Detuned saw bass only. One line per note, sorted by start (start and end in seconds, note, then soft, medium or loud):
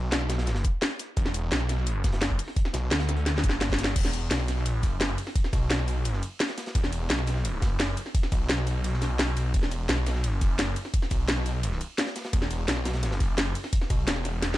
0.00 0.11 B1 medium
0.12 0.63 B1 loud
1.17 1.50 E1 medium
1.52 2.03 B1 loud
2.04 2.38 F#1 loud
2.74 2.90 B1 loud
2.91 3.42 D2 loud
3.44 3.95 G1 medium
3.96 4.29 E1 medium
4.31 4.82 B1 loud
4.83 5.17 F#1 medium
5.53 5.69 B1 loud
5.70 6.21 B1 loud
6.75 7.09 E1 medium
7.10 7.61 B1 medium
7.62 7.96 F#1 loud
8.32 8.48 B1 loud
8.50 9.35 B1 loud
9.37 9.53 B1 loud
9.54 9.88 E1 medium
9.89 10.40 B1 loud
10.41 10.75 F#1 loud
11.11 11.27 B1 medium
11.29 11.80 B1 loud
12.33 12.67 E1 medium
12.68 13.19 B1 loud
13.20 13.54 F#1 medium
13.90 14.06 B1 loud
14.08 14.58 E1 loud